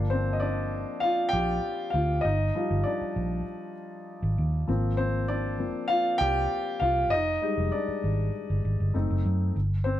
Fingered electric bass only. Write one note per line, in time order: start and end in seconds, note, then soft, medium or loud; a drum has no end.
0.00 0.84 G1 medium
1.33 1.59 A#1 medium
1.94 2.19 D2 medium
2.25 2.50 G1 loud
2.71 2.83 G1 medium
3.01 muted fingered electric bass stroke soft
3.16 3.41 A#1 medium
4.22 4.35 G#1 medium
4.38 4.63 D#2 medium
4.68 5.71 G#1 loud
6.21 6.46 C2 loud
6.81 7.12 C2 medium
7.12 7.37 F1 loud
7.58 7.70 F1 medium
7.88 muted fingered electric bass stroke soft
8.04 8.29 G#1 medium
8.50 8.62 G1 medium
8.65 8.77 G#1 medium
8.80 8.92 G1 medium
8.95 9.07 F#1 medium
9.10 9.23 F#1 medium
9.25 9.50 F#2 loud
9.56 10.00 G1 medium